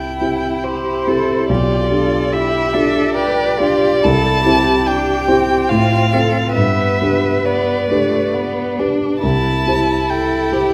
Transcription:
Already playing: C2 C4 E4 G4 G5
0.21 C4 E4 G4
0.64 G4 C5
1.07 C4 E4 G4 A4
1.49 B1 F4 G4 D5
1.90 D4 F4 G4 A4
2.33 E4 G4 E5
2.73 D4 F4 G4 A4
3.15 G4 B4 D5
3.59 D4 F4 G4
4.04 C2 E4 A4 A5
4.45 C4 E4 G4
4.86 D4 G5
5.28 C4 E4 G4
5.68 A2 F4 F5
6.13 C4 F4 A4
6.54 G2 B3 B4 E5
7.02 D4 G4 B4
7.46 B3 D5
7.90 A3 D4 G4 B4
8.34 B3
8.79 D4 G4 B4
9.22 C2 E4 A5
9.67 E4 G4 C5
10.09 A4 G5
10.52 E4 G4 C5

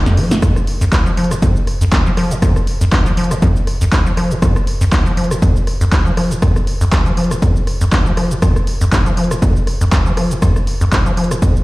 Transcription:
0.06 F2, snare, shaker
0.17 F3, open hi-hat
0.31 G#2, snare, closed hi-hat, shaker
0.42 F2, kick, cross-stick, closed hi-hat, shaker
0.56 cross-stick, shaker
0.67 open hi-hat
0.81 F2, closed hi-hat, shaker
0.92 D#2, kick, cross-stick, clap, closed hi-hat, shaker
1.06 F3, closed hi-hat, shaker
1.17 F3, open hi-hat
1.24 closed hi-hat
1.31 G#2, cross-stick, closed hi-hat, shaker
1.42 F2, kick, closed hi-hat, shaker
1.56 shaker
1.67 cross-stick, open hi-hat
1.81 F2, closed hi-hat, shaker
1.92 D#2, kick, clap, closed hi-hat, shaker
2.06 F3, shaker
2.17 F3, cross-stick, open hi-hat
2.31 G#2, closed hi-hat, shaker
2.42 F2, kick, cross-stick, closed hi-hat, shaker
2.56 cross-stick, shaker
2.67 open hi-hat
2.81 F2, closed hi-hat, shaker
2.92 D#2, kick, cross-stick, clap, closed hi-hat, shaker
3.06 F3, closed hi-hat, shaker
3.17 F3, open hi-hat
3.24 closed hi-hat
3.31 G#2, cross-stick, closed hi-hat, shaker
3.42 F2, kick, closed hi-hat, shaker
3.56 shaker
3.67 cross-stick, open hi-hat
3.81 F2, closed hi-hat, shaker
3.92 D#2, kick, clap, closed hi-hat, shaker
4.06 F3, shaker
4.17 F3, cross-stick, open hi-hat
4.31 G#2, closed hi-hat, shaker
4.42 F2, kick, cross-stick, closed hi-hat, shaker
4.56 cross-stick, shaker
4.67 open hi-hat
4.81 F2, closed hi-hat, shaker
4.92 D#2, kick, cross-stick, clap, closed hi-hat, shaker
5.06 F3, closed hi-hat, shaker
5.17 F3, open hi-hat
5.24 closed hi-hat
5.31 G#2, cross-stick, closed hi-hat, shaker
5.42 F2, kick, closed hi-hat, shaker
5.56 shaker
5.67 cross-stick, open hi-hat
5.81 F2, closed hi-hat, shaker
5.92 D#2, kick, clap, closed hi-hat, shaker
6.06 F3, shaker
6.17 F3, cross-stick, open hi-hat
6.31 G#2, closed hi-hat, shaker
6.42 F2, kick, cross-stick, closed hi-hat, shaker
6.56 cross-stick, shaker
6.67 open hi-hat
6.81 F2, closed hi-hat, shaker
6.92 D#2, kick, cross-stick, clap, closed hi-hat, shaker
7.06 F3, closed hi-hat, shaker
7.17 F3, open hi-hat
7.24 closed hi-hat
7.31 G#2, cross-stick, closed hi-hat, shaker
7.42 F2, kick, closed hi-hat, shaker
7.56 shaker
7.67 cross-stick, open hi-hat
7.81 F2, closed hi-hat, shaker
7.92 D#2, kick, clap, closed hi-hat, shaker
8.06 F3, shaker
8.17 F3, cross-stick, open hi-hat
8.31 G#2, closed hi-hat, shaker
8.42 F2, kick, cross-stick, closed hi-hat, shaker
8.56 cross-stick, shaker
8.67 open hi-hat
8.81 F2, closed hi-hat, shaker
8.92 D#2, kick, cross-stick, clap, closed hi-hat, shaker
9.06 F3, closed hi-hat, shaker
9.17 F3, open hi-hat
9.24 closed hi-hat
9.31 G#2, cross-stick, closed hi-hat, shaker
9.42 F2, kick, closed hi-hat, shaker
9.56 shaker
9.67 cross-stick, open hi-hat
9.81 F2, closed hi-hat, shaker
9.92 D#2, kick, clap, closed hi-hat, shaker
10.06 F3, shaker
10.17 F3, cross-stick, open hi-hat
10.31 G#2, closed hi-hat, shaker
10.42 F2, kick, cross-stick, closed hi-hat, shaker
10.56 cross-stick, shaker
10.67 open hi-hat
10.81 F2, closed hi-hat, shaker
10.92 D#2, kick, cross-stick, clap, closed hi-hat, shaker
11.06 F3, closed hi-hat, shaker
11.17 F3, open hi-hat
11.24 closed hi-hat
11.31 G#2, cross-stick, closed hi-hat, shaker
11.42 F2, kick, closed hi-hat, shaker
11.56 shaker

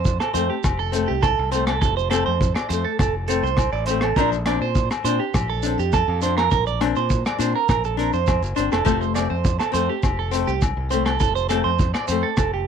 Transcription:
Already playing: F2 C5
0.05 kick, shekere
0.20 A4, cross-stick, low agogo, shekere
0.34 F2 A3 C4 C5, closed hi-hat, shekere
0.50 G4
0.64 F1, kick, cross-stick, low agogo, shekere
0.79 A4
0.92 A3 C4, closed hi-hat, shekere
1.08 C2 G4
1.22 A4, kick, cross-stick, low agogo, shekere
1.39 C2
1.51 A3 C4 C5, closed hi-hat, shekere
1.67 A4, cross-stick, low agogo
1.81 F1 A4, kick, shekere
1.97 C5, shekere
2.10 A3 C4 A4, cross-stick, closed hi-hat, low agogo, shekere
2.26 F2 C5
2.41 kick, shekere
2.55 D5, cross-stick, low agogo, shekere
2.69 F2 A3 C5, muted nylon-string guitar stroke, closed hi-hat, shekere
2.85 A4
2.99 F1 A4, kick, cross-stick, low agogo, shekere
3.28 A3 C4 A4, closed hi-hat, shekere
3.43 C2 C5, shekere
3.57 kick, cross-stick, low agogo, shekere
3.73 A1 D5
3.86 C4 C5, closed hi-hat, shekere
3.90 A3
4.01 A4, cross-stick, low agogo
4.16 A#1 F3 D4 A#4, muted nylon-string guitar stroke, kick, shekere
4.32 muted clean electric guitar stroke, shekere
4.46 C4 D4 D5, cross-stick, closed hi-hat, low agogo
4.61 A#2 C5
4.75 kick, shekere
4.91 muted clean electric guitar stroke, cross-stick, low agogo, shekere
5.04 A#2 C4 D4 C5, closed hi-hat, shekere
5.20 G4
5.34 A#1, kick, cross-stick, low agogo, shekere
5.50 A4
5.63 C4 D4, closed hi-hat, shekere
5.78 F2 G4, shekere
5.93 A4, kick, cross-stick, low agogo, shekere
6.08 F2
6.22 C4 D4 C5, closed hi-hat, shekere
6.38 A#4, cross-stick, low agogo
6.51 A#1 A#4, kick, shekere
6.67 D5, shekere
6.81 C4 D4, cross-stick, closed hi-hat, low agogo
6.96 A#2 C5, shekere
7.10 kick, shekere
7.26 D5, cross-stick, low agogo, shekere
7.39 A#2 C4 D4 C5, closed hi-hat, shekere
7.56 A#4
7.69 A#1 A#4, kick, cross-stick, low agogo, shekere
7.84 A4, shekere
7.97 C4 D4 A#4, closed hi-hat
8.13 F2 C5, shekere
8.27 kick, cross-stick, low agogo, shekere
8.42 F#1, shekere
8.56 G1 C4 D4 C5, closed hi-hat, shekere
8.72 F1 A4, cross-stick, low agogo, shekere
8.85 F1 F3 A3 C4 A4, kick, shekere
9.01 C5, shekere
9.14 A3 C4 D5, cross-stick, closed hi-hat, low agogo, shekere
9.30 F2 C5
9.45 kick, shekere
9.59 A4, cross-stick, low agogo, shekere
9.72 F2 A3 C4 C5, closed hi-hat, shekere
9.89 G4
10.03 F1, kick, cross-stick, low agogo, shekere
10.19 A4
10.31 A3 C4, closed hi-hat, shekere
10.47 C2 G4, shekere
10.62 kick, cross-stick, low agogo, shekere
10.77 C2
10.90 A3 C4 C5, closed hi-hat, shekere
11.06 A4, cross-stick, low agogo
11.20 F1 A4, kick, shekere
11.35 C5, shekere
11.49 A3 C4 A4, cross-stick, closed hi-hat, low agogo, shekere
11.64 F2 C5
11.79 kick, shekere
11.94 D5, cross-stick, low agogo, shekere
12.08 F2 A3 C4 C5, closed hi-hat, shekere
12.23 A4
12.37 F1 A4, kick, cross-stick, low agogo, shekere
12.54 G4

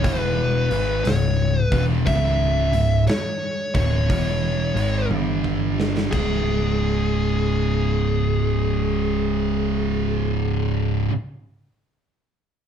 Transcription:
0.04 E1 E2 B2 E3 B4, kick, open hi-hat
0.70 G#1 G#2 D#3 G#3, open hi-hat
1.04 C#1 C#2 G#2 C#5, snare, open hi-hat
1.63 B4
1.72 E1 E2 B2 E3, kick, open hi-hat
2.06 C#1 C#2 G#2 C#3 E5, kick, open hi-hat
2.72 C#1 C#2 G#2, open hi-hat
3.07 C#5, snare, open hi-hat
3.74 D1 D2 A2 D3 C#5, kick, open hi-hat
4.09 E1 E2 B2 E3, kick, open hi-hat
4.74 G#1 G#2 D#3 G#3, open hi-hat
5.09 G1 G2 D3 G3, high tom
5.44 kick
5.80 snare
5.97 snare
6.11 C#1 C#2 G#2 G#4, kick, crash
6.15 C#3

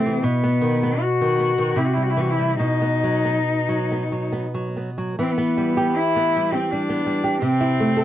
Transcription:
Already playing: C3 A3 C4
0.06 E3
0.23 B2 B3
0.44 B3
0.61 D#3
0.83 B3
1.01 F#4
1.21 D#3
1.39 B3
1.58 D#3
1.76 C3 E4
1.85 F#4
1.93 G3 E4
2.03 F#4
2.10 E4
2.17 E3 F#4
2.30 E4
2.39 G3
2.59 B2 D#4
2.81 B3
3.04 F#3
3.25 B3
3.69 F#3
3.92 B3
4.12 F#3
4.32 B3
4.54 F#3
4.76 B3
4.98 F#3
5.19 E3 B3 C4
5.31 B3
5.38 B3
5.57 G3
5.77 G4
5.96 E4
6.16 B3
6.36 G3
6.52 C4 G4
6.71 G3 D4
6.89 B3
7.06 G3
7.24 G4
7.42 C3 C4
7.61 E4
7.80 A3
7.97 A4

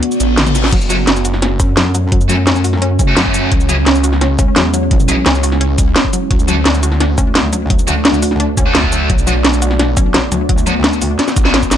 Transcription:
Already playing: B3 D4 F#4 D5
0.03 closed hi-hat, reverse cymbal
0.11 cabasa
0.20 A1, closed hi-hat, cabasa
0.38 snare, closed hi-hat, high tom
0.46 high tom, cabasa
0.55 snare, closed hi-hat, cabasa
0.64 snare
0.72 F#1 F#3 A3 C#4 C#5, kick, closed hi-hat, crash
0.81 cabasa
0.90 F#3 A3 C#4 F#4, closed hi-hat, cabasa
1.07 F#1 C#4, snare, closed hi-hat
1.16 cabasa
1.25 F#4, closed hi-hat, cabasa
1.34 snare
1.42 C#4, snare, closed hi-hat
1.60 F#2 C#4, kick, closed hi-hat, cabasa
1.77 F#3, snare, closed hi-hat
1.95 F#3, closed hi-hat, cabasa
2.12 F#3, kick, closed hi-hat
2.21 cabasa
2.29 F#3 A3 C#4 F#4, closed hi-hat, cabasa
2.47 C#4, snare, closed hi-hat
2.56 cabasa
2.64 F#4, open hi-hat, cabasa
2.73 snare
2.82 C#4, closed hi-hat
2.99 F#1 C#4, kick, closed hi-hat, cabasa
3.08 A3 C#4 F#4
3.17 F#2 F#3, snare, closed hi-hat
3.25 kick
3.34 F#3, closed hi-hat, cabasa
3.51 C#2 F#3 G#3 E4, kick, closed hi-hat
3.60 cabasa
3.69 F#3 C#4 E4 G#4, closed hi-hat, cabasa
3.86 C#2 C#4, snare, closed hi-hat
3.95 cabasa
4.04 F#4, closed hi-hat, cabasa
4.13 snare
4.21 C#4, snare, closed hi-hat
4.39 C#2 C#4, kick, closed hi-hat, cabasa
4.56 E2 F#3, snare, closed hi-hat
4.74 F#3, closed hi-hat, cabasa
4.91 F#3, kick, closed hi-hat
5.00 cabasa
5.08 B1 F#3 C#4 E4 G#4, closed hi-hat, cabasa
5.26 C#2 C#4, snare, closed hi-hat
5.35 cabasa
5.43 F#4, open hi-hat, cabasa
5.52 snare
5.61 C#4, closed hi-hat
5.78 C#2 G#3, kick, closed hi-hat, cabasa
5.96 C#4, snare, closed hi-hat
6.04 kick
6.13 F#3, closed hi-hat, cabasa
6.30 D2 F#3 A3 D4 F#4 D5, kick, closed hi-hat
6.39 cabasa
6.48 F#3 A3 D4 F#4, closed hi-hat, cabasa
6.65 D2 D4, snare, closed hi-hat
6.74 cabasa
6.83 F#4, closed hi-hat, cabasa
6.92 snare
7.00 D4, snare, closed hi-hat
7.18 D2 C#4, kick, closed hi-hat, cabasa
7.35 F#3, snare, closed hi-hat
7.53 F#3, closed hi-hat, cabasa
7.70 F#3, kick, closed hi-hat
7.79 cabasa
7.87 F#3 A3 D4 F#4, closed hi-hat, cabasa
8.05 D4, snare, closed hi-hat
8.14 cabasa
8.22 F#4, open hi-hat, cabasa
8.31 snare
8.40 D4, closed hi-hat
8.57 D2 C#4, kick, closed hi-hat, cabasa
8.66 A3 D4 F#4
8.75 D2 F#3, snare, closed hi-hat
8.83 kick
8.92 F#3, closed hi-hat, cabasa
9.10 B1 F#3 B3 F#4, kick, closed hi-hat
9.18 cabasa
9.27 F#3 B3 D4 F#4, closed hi-hat, cabasa
9.44 B1 D4, snare, closed hi-hat
9.53 cabasa
9.62 F#4, closed hi-hat, cabasa
9.71 snare
9.79 D4, snare, closed hi-hat
9.97 B1 C#4, kick, closed hi-hat, cabasa
10.14 F#3, snare, closed hi-hat
10.32 D2 F#3, closed hi-hat, cabasa
10.49 F#3, kick, closed hi-hat
10.58 cabasa
10.66 F#3 B3 D4 F#4, closed hi-hat, cabasa
10.84 D4, snare, closed hi-hat
10.93 cabasa
11.02 F#4, open hi-hat, cabasa
11.19 D4, snare, closed hi-hat
11.28 snare, cabasa
11.36 A1 F#4, kick, closed hi-hat, cabasa
11.45 B3 D4 F#4, snare
11.54 C#4, snare, closed hi-hat
11.63 kick, cabasa
11.71 G#3, snare, closed hi-hat, cabasa

